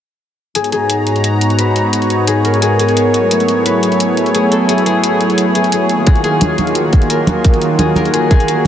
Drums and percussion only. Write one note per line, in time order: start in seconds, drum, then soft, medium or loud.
0.55 closed hi-hat medium
0.64 closed hi-hat soft
0.72 closed hi-hat medium
0.90 closed hi-hat medium
1.07 closed hi-hat medium
1.16 closed hi-hat soft
1.24 closed hi-hat medium
1.41 closed hi-hat medium
1.50 closed hi-hat soft
1.59 closed hi-hat medium
1.76 closed hi-hat medium
1.93 closed hi-hat medium
2.02 closed hi-hat soft
2.10 closed hi-hat medium
2.27 closed hi-hat medium
2.45 closed hi-hat medium
2.54 closed hi-hat soft
2.62 closed hi-hat medium
2.79 closed hi-hat medium
2.89 closed hi-hat soft
2.97 closed hi-hat medium
3.14 closed hi-hat medium
3.31 closed hi-hat medium
3.40 closed hi-hat soft
3.48 closed hi-hat medium
3.66 closed hi-hat medium
3.83 closed hi-hat medium
3.92 closed hi-hat soft
4.00 closed hi-hat medium
4.17 closed hi-hat medium
4.26 closed hi-hat soft
4.35 closed hi-hat medium
4.52 closed hi-hat medium
4.69 closed hi-hat medium
4.78 closed hi-hat soft
4.86 closed hi-hat medium
5.04 closed hi-hat medium
5.21 closed hi-hat medium
5.30 closed hi-hat soft
5.38 closed hi-hat medium
5.55 closed hi-hat medium
5.64 closed hi-hat soft
5.72 closed hi-hat medium
5.89 closed hi-hat medium
6.07 kick loud
6.07 closed hi-hat medium
6.16 closed hi-hat soft
6.24 closed hi-hat medium
6.41 closed hi-hat medium
6.41 high conga medium
6.58 closed hi-hat medium
6.58 high conga medium
6.67 closed hi-hat soft
6.75 closed hi-hat medium
6.93 kick loud
6.93 closed hi-hat medium
7.02 closed hi-hat soft
7.10 closed hi-hat medium
7.27 closed hi-hat medium
7.27 high conga medium
7.44 kick loud
7.44 closed hi-hat medium
7.54 closed hi-hat soft
7.62 closed hi-hat medium
7.79 closed hi-hat medium
7.79 high conga medium
7.96 closed hi-hat medium
7.96 high conga medium
8.05 closed hi-hat soft
8.14 closed hi-hat medium
8.31 kick loud
8.31 closed hi-hat medium
8.40 closed hi-hat soft
8.48 closed hi-hat medium